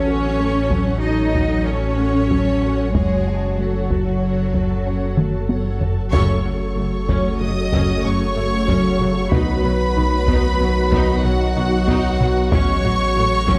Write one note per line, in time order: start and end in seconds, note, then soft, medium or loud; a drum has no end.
0.00 2.95 A1 medium
0.00 2.96 A1 medium
0.00 6.09 F#3 medium
0.00 0.99 C#4 medium
0.00 6.14 C#4 medium
0.00 2.78 F#4 medium
0.00 6.10 F#4 medium
0.00 1.00 C#5 medium
0.00 5.77 C#5 medium
0.00 6.13 C#5 medium
0.08 0.27 F#4 medium
0.08 0.39 F#4 soft
0.08 0.38 A4 soft
0.08 0.39 F#5 medium
0.39 0.58 A3 medium
0.39 0.71 A4 soft
0.39 0.71 C#5 soft
0.39 0.71 A5 soft
0.70 0.90 F#3 medium
0.70 1.04 F#4 soft
0.70 1.02 A4 soft
0.70 1.03 F#5 soft
0.70 taiko medium
1.03 1.65 D#4 medium
1.03 1.23 F#4 medium
1.03 1.33 A4 soft
1.03 1.33 C#5 soft
1.03 1.66 D#5 medium
1.03 1.33 A5 soft
1.35 1.55 F#3 medium
1.35 1.67 F#4 soft
1.35 1.66 A4 soft
1.35 1.67 F#5 soft
1.35 taiko medium
1.67 2.95 C#4 medium
1.67 1.87 C#4 medium
1.67 1.98 A4 soft
1.67 2.95 C#5 medium
1.67 1.99 C#5 soft
1.67 1.99 A5 soft
1.99 2.18 A3 medium
1.99 2.31 F#4 soft
1.99 2.29 A4 soft
1.99 2.31 F#5 soft
2.30 2.50 F#3 medium
2.30 2.60 A4 soft
2.30 2.60 C#5 soft
2.30 2.61 A5 soft
2.30 taiko medium
2.63 2.82 F#4 medium
2.63 2.94 F#4 soft
2.63 2.95 A4 soft
2.63 2.93 F#5 soft
2.94 6.13 F#1 medium
2.94 5.90 F#1 medium
2.94 3.13 F#3 medium
2.94 3.57 G#3 medium
2.94 3.24 F#4 soft
2.94 5.78 F#4 medium
2.94 3.57 G#4 medium
2.94 3.24 C#5 soft
2.94 3.24 F#5 soft
2.94 taiko medium
3.27 3.59 F#4 soft
3.27 3.46 F#4 medium
3.27 3.58 C#5 soft
3.27 3.59 A5 soft
3.58 5.82 F#3 medium
3.58 3.78 A3 medium
3.58 5.82 F#4 medium
3.58 3.89 A4 soft
3.58 3.91 C#5 soft
3.58 3.90 F#5 soft
3.90 4.10 F#3 medium
3.90 4.22 F#4 soft
3.90 4.22 A4 soft
3.90 4.22 A5 soft
3.90 taiko medium
4.22 4.41 F#4 medium
4.22 4.52 A4 soft
4.22 4.52 C#5 soft
4.22 4.52 F#5 soft
4.54 4.73 F#3 medium
4.54 4.86 F#4 soft
4.54 4.85 A4 soft
4.54 4.86 A5 soft
4.54 taiko medium
4.86 5.05 C#4 medium
4.86 5.17 A4 soft
4.86 5.18 C#5 soft
4.86 5.18 F#5 soft
5.17 5.37 A3 medium
5.17 5.50 F#4 soft
5.17 5.49 A4 soft
5.17 5.50 A5 soft
5.17 taiko mid medium
5.49 5.69 F#3 medium
5.49 5.80 A4 soft
5.49 5.80 C#5 soft
5.49 5.79 F#5 soft
5.49 taiko high medium
5.81 6.13 F#4 soft
5.81 6.01 F#4 medium
5.81 6.13 A4 soft
5.81 6.13 A5 soft
5.81 taiko low medium
6.12 6.43 F#1 medium
6.12 9.34 F#1 medium
6.12 6.43 F#2 medium
6.12 9.29 C#3 medium
6.12 12.48 F#3 medium
6.12 6.33 F#3 medium
6.12 9.28 A3 medium
6.12 9.29 A3 loud
6.12 6.43 C#4 medium
6.12 12.47 F#4 medium
6.12 12.48 F#4 loud
6.12 9.29 A4 medium
6.12 7.37 C#5 loud
6.12 9.29 C#5 loud
6.12 7.37 C#6 medium
6.12 taiko loud
6.45 6.54 F#1 medium
6.45 6.53 F#2 medium
6.45 6.53 F#3 soft
6.45 6.65 F#4 medium
6.77 6.85 F#1 medium
6.77 6.85 F#2 medium
6.77 6.97 A3 medium
6.77 6.86 A3 medium
7.09 7.17 F#1 medium
7.09 7.17 F#2 medium
7.09 7.28 F#3 loud
7.09 7.39 C#4 medium
7.09 taiko medium
7.41 7.49 F#1 medium
7.41 7.49 F#2 medium
7.41 7.50 F#3 medium
7.41 7.60 F#4 medium
7.41 8.05 D#5 medium
7.41 8.04 D#6 loud
7.73 7.81 F#1 medium
7.73 7.81 F#2 medium
7.73 7.92 F#3 loud
7.73 8.03 C#4 medium
7.73 taiko medium
8.04 8.13 F#1 medium
8.04 8.12 F#2 medium
8.04 8.14 F#3 medium
8.04 8.24 C#4 medium
8.04 9.33 C#5 medium
8.04 9.33 C#6 loud
8.36 8.45 F#1 medium
8.36 8.44 F#2 medium
8.36 8.45 A3 medium
8.36 8.56 A3 medium
8.68 8.77 F#1 medium
8.68 8.76 F#2 medium
8.68 8.88 F#3 loud
8.68 8.98 C#4 medium
8.68 taiko medium
9.00 9.09 F#1 medium
9.00 9.08 F#2 medium
9.00 9.09 F#3 medium
9.00 9.20 F#4 medium
9.00 taiko low-mid soft
9.32 9.40 B1 medium
9.32 12.54 B1 medium
9.32 9.40 B2 medium
9.32 12.48 D#3 medium
9.32 13.11 B3 medium
9.32 12.52 B3 medium
9.32 9.52 B3 loud
9.32 9.62 D#4 medium
9.32 13.59 F#4 medium
9.32 11.20 B4 loud
9.32 12.52 D#5 medium
9.32 11.20 B5 loud
9.32 taiko loud
9.64 9.72 B1 medium
9.64 9.72 B2 medium
9.64 9.73 F#3 medium
9.64 9.84 B4 medium
9.96 10.04 B1 medium
9.96 10.04 B2 medium
9.96 10.05 B3 medium
9.96 10.16 D#4 medium
10.28 10.36 B1 medium
10.28 10.36 B2 medium
10.28 10.48 B3 loud
10.28 10.59 D#4 medium
10.28 taiko medium
10.60 10.68 B1 medium
10.60 10.69 B2 medium
10.60 10.70 F#3 medium
10.60 10.79 B4 medium
10.92 11.00 B1 medium
10.92 11.00 B2 medium
10.92 11.12 B3 medium
10.92 11.23 D#4 medium
10.92 taiko medium
11.24 11.32 B1 medium
11.24 11.32 B2 medium
11.24 11.33 F#3 medium
11.24 12.52 F#4 loud
11.24 11.44 F#4 medium
11.24 12.52 F#5 loud
11.56 11.64 B1 medium
11.56 11.64 B2 medium
11.56 11.64 B3 medium
11.56 11.76 D#4 medium
11.88 11.96 B1 medium
11.88 11.96 B2 medium
11.88 12.08 B3 loud
11.88 12.18 D#4 medium
11.88 taiko medium
12.20 12.29 B1 medium
12.20 12.28 B2 medium
12.20 12.28 F#3 medium
12.20 12.39 B4 medium
12.20 taiko low-mid medium
12.51 12.60 A1 medium
12.51 13.59 A1 medium
12.51 12.60 A2 medium
12.51 13.59 C#3 medium
12.51 13.59 F#3 medium
12.51 12.72 F#3 loud
12.51 13.59 A3 medium
12.51 12.82 C#4 medium
12.51 13.59 F#4 medium
12.51 13.59 C#5 loud
12.51 13.59 C#5 medium
12.51 13.59 C#6 loud
12.51 taiko loud
12.84 12.92 A1 medium
12.84 12.92 A2 medium
12.84 12.93 F#3 medium
12.84 13.04 F#4 medium
13.16 13.24 A1 medium
13.16 13.24 A2 medium
13.16 13.59 A3 medium
13.16 13.25 A3 medium
13.16 13.36 A3 medium
13.47 13.55 A1 medium
13.47 13.55 A2 medium
13.47 13.59 F#3 loud
13.47 13.59 C#4 medium
13.47 taiko medium